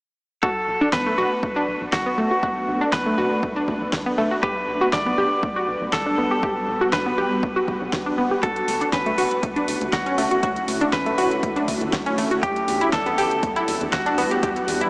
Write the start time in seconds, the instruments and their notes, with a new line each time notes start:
0.43 analog synth bass B1, ambient pad A3 B3 D4, synth pluck F#4, clean electric guitar A4, kick
0.68 analog synth bass B1
0.81 synth pluck D4
0.93 analog synth bass B1, synth pluck B3, clean electric guitar B4, kick, snare
1.06 analog synth bass B1, synth pluck A3
1.18 analog synth bass B1, synth pluck F#4
1.43 analog synth bass B1, kick
1.56 synth pluck D4
1.68 analog synth bass B1
1.81 analog synth bass B1
1.93 analog synth bass B1, clean electric guitar F#4, kick, snare
2.06 synth pluck B3
2.18 analog synth bass B1, synth pluck A3
2.31 synth pluck F#4
2.43 analog synth bass B1, synth pluck F#4, kick
2.68 analog synth bass B1
2.81 synth pluck D4
2.93 analog synth bass B1, synth pluck B3, clean electric guitar B4, kick, snare
3.06 analog synth bass B1, synth pluck A3
3.18 analog synth bass B1, synth pluck F#4
3.43 analog synth bass B1, kick
3.56 synth pluck D4
3.68 analog synth bass B1, kick
3.81 analog synth bass B1
3.93 analog synth bass F#1, kick, snare
4.06 synth pluck B3
4.18 analog synth bass F#1, synth pluck A3
4.31 synth pluck F#4
4.43 analog synth bass B1, ambient pad G3 B3 F#4, synth pluck G4, clean electric guitar B4, kick
4.68 analog synth bass B1
4.81 synth pluck F#4
4.93 analog synth bass B1, synth pluck D4, clean electric guitar D5, kick, snare
5.06 analog synth bass B1, synth pluck B3
5.18 analog synth bass B1, synth pluck G4
5.43 analog synth bass B1, kick
5.56 synth pluck F#4
5.68 analog synth bass B1
5.81 analog synth bass B1
5.93 analog synth bass B1, clean electric guitar A4, kick, snare
6.06 synth pluck D4
6.18 analog synth bass B1, synth pluck B3
6.31 synth pluck G4
6.43 analog synth bass B1, synth pluck G4, kick
6.68 analog synth bass B1
6.81 synth pluck F#4
6.93 analog synth bass B1, synth pluck D4, clean electric guitar B4, kick, snare
7.06 analog synth bass B1, synth pluck B3
7.18 analog synth bass B1, synth pluck G4
7.43 analog synth bass B1, kick
7.56 synth pluck F#4
7.68 analog synth bass B1, kick
7.81 analog synth bass B1
7.93 analog synth bass F#1, kick, snare
8.06 synth pluck D4
8.18 analog synth bass F#1, synth pluck B3
8.31 synth pluck G4
8.43 analog synth bass D2, ambient pad D3 A3 C#4 E4, synth pluck F#4, clean electric guitar A4, kick, closed hi-hat
8.56 closed hi-hat
8.68 analog synth bass D2, open hi-hat
8.81 synth pluck D4, closed hi-hat
8.93 analog synth bass D2, synth pluck C#4, clean electric guitar B4, kick, snare, closed hi-hat
9.06 analog synth bass D2, synth pluck A3, closed hi-hat
9.18 analog synth bass D2, synth pluck F#4, open hi-hat
9.31 closed hi-hat
9.43 analog synth bass D2, kick, closed hi-hat
9.56 synth pluck D4, closed hi-hat
9.68 analog synth bass D2, open hi-hat
9.81 analog synth bass D2, closed hi-hat
9.93 analog synth bass D2, clean electric guitar F#4, kick, snare, closed hi-hat
10.06 synth pluck C#4, closed hi-hat
10.18 analog synth bass D2, synth pluck A3, open hi-hat
10.31 synth pluck F#4, closed hi-hat
10.43 analog synth bass D2, synth pluck F#4, kick, closed hi-hat
10.56 closed hi-hat
10.68 analog synth bass D2, open hi-hat
10.81 synth pluck D4, closed hi-hat
10.93 analog synth bass D2, synth pluck C#4, clean electric guitar B4, kick, snare, closed hi-hat
11.06 analog synth bass D2, synth pluck A3, closed hi-hat
11.18 analog synth bass D2, synth pluck F#4, open hi-hat
11.31 closed hi-hat
11.43 analog synth bass D2, kick, closed hi-hat
11.56 synth pluck D4, closed hi-hat
11.68 analog synth bass D2, kick, open hi-hat
11.81 analog synth bass D2, closed hi-hat
11.93 analog synth bass D1, kick, snare, closed hi-hat
12.06 synth pluck C#4, closed hi-hat
12.18 analog synth bass A1, synth pluck A3, open hi-hat
12.31 synth pluck F#4, closed hi-hat
12.43 analog synth bass E2, ambient pad E3 G3 B3 D4 F#5, synth pluck G4, clean electric guitar G4, kick, closed hi-hat
12.56 closed hi-hat
12.68 analog synth bass E2, open hi-hat
12.81 synth pluck E4, closed hi-hat
12.93 analog synth bass E2, synth pluck D4, clean electric guitar A4, kick, snare, closed hi-hat
13.06 analog synth bass E2, synth pluck B3, closed hi-hat
13.18 analog synth bass E2, synth pluck G4, open hi-hat
13.31 closed hi-hat
13.43 analog synth bass E2, kick, closed hi-hat
13.56 synth pluck E4, closed hi-hat
13.68 analog synth bass E2, open hi-hat
13.81 analog synth bass E2, closed hi-hat
13.93 analog synth bass E2, clean electric guitar F#4, kick, snare, closed hi-hat
14.06 synth pluck D4, closed hi-hat
14.18 analog synth bass E2, synth pluck B3, open hi-hat
14.31 synth pluck G4, closed hi-hat
14.43 analog synth bass E2, synth pluck G4, kick, closed hi-hat
14.56 closed hi-hat
14.68 analog synth bass E2, open hi-hat
14.81 synth pluck E4, closed hi-hat